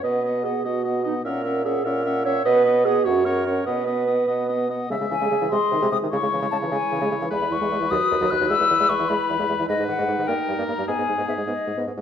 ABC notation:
X:1
M:6/8
L:1/16
Q:3/8=100
K:B
V:1 name="Flute"
f2 f2 f2 f2 f2 f2 | f2 f2 f2 f2 f2 f2 | f2 f2 f2 f2 f2 f2 | f2 f2 f2 f2 f2 f2 |
[K:C#m] e2 g4 ^b4 d'2 | c'4 a2 g6 | b2 c'4 d'4 f'2 | e'4 c'2 b6 |
d2 f4 =g4 ^a2 | g4 e2 d4 z2 |]
V:2 name="Oboe"
d2 d2 d2 d2 d2 d2 | e2 e2 e2 e2 e2 e2 | d2 d2 d2 c2 c2 c2 | d2 d2 d2 d2 d2 d2 |
[K:C#m] e6 d6 | c12 | B12- | B12 |
B6 ^A6 | G8- G2 z2 |]
V:3 name="Clarinet"
B4 G2 F4 D2 | A4 G2 A4 c2 | B4 G2 F2 A4 | B8- B2 z2 |
[K:C#m] G12 | E12- | E6 F6 | E12 |
D12- | D8- D2 z2 |]
V:4 name="French horn" clef=bass
B,2 B,2 B,2 B,2 B,2 B,2 | C2 C2 C2 C2 C2 C2 | B,2 B,2 B,2 C2 C2 C2 | B,2 B,2 B,2 B,2 B,2 B,2 |
[K:C#m] G, G, E, G, G, E, G, z D, G, G, D, | G, G, E, G, G, E, G, z E, G, G, E, | G, G, E, G, G, E, F, z D, F, F, D, | G, G, E, G, G, E, G, z E, G, G, E, |
G, G, D, G, G, D, ^A, z =G, A, A, G, | B, B, G, B, B, G, B, z G, B, B, G, |]
V:5 name="Bassoon" clef=bass
B,,4- B,, z B,,4- B,, z | A,,4- A,, z A,,4- A,, z | B,,4- B,, z F,,4- F,, z | B,,4- B,, z B,,4- B,, z |
[K:C#m] C, C, C, C, C, C, ^B,, z B,, B,, B,, B,, | C, C, C, C, C, C, C, z C, C, C, C, | E,, E,, E,, E,, E,, E,, D,, z D,, D,, D,, D,, | E,, E,, E,, E,, E,, E,, E,, z E,, E,, E,, E,, |
G,, G,, G,, G,, G,, G,, =G,, z G,, G,, G,, G,, | G,, G,, G,, G,, G,, G,, G,, z G,, G,, G,, G,, |]